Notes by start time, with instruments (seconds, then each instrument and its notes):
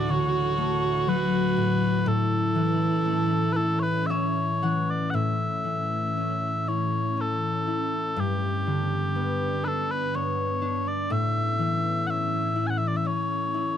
Already playing: ambient pad D2 A2 F#3, harp D2 A2 A3 E4, viola F#4, bagpipes D5
0.08 harp D3, bagpipes C#5
0.58 harp A3
1.07 harp F#3, bagpipes B4
1.57 harp A2
2.05 harp A2, ambient pad E3 C#4, viola E4, bagpipes A4
2.55 harp E3
3.05 harp A3
3.53 harp E4, bagpipes A4 B4
3.80 bagpipes B4 C#5
4.07 harp C#4 E5, bagpipes E5
4.11 bagpipes C#5
4.63 harp E3 F#5
4.91 bagpipes D5
5.10 ambient pad A2 E3 C#4, harp A2, bagpipes F#5
5.15 bagpipes E5
5.64 harp E3
6.17 harp C#4
6.68 harp E4, bagpipes C#5
7.17 harp C#4, bagpipes A4
7.67 harp E4
8.16 harp G2, ambient pad G2 D3 B3, bagpipes G4
8.67 harp D3
9.15 harp B3
9.64 harp D4, bagpipes B4
9.68 bagpipes A4
9.91 bagpipes B4
10.14 harp B3, bagpipes C#5
10.62 harp D4
10.88 bagpipes D5
11.10 harp A2, ambient pad A2 E3 C#4, bagpipes E5
11.59 harp E3
12.07 harp C#4, bagpipes E5 F#5
12.56 harp E4
12.67 bagpipes F#5 G#5
12.78 bagpipes E5
12.88 bagpipes D5
12.97 bagpipes E5
13.05 harp C#4, bagpipes C#5
13.54 harp E4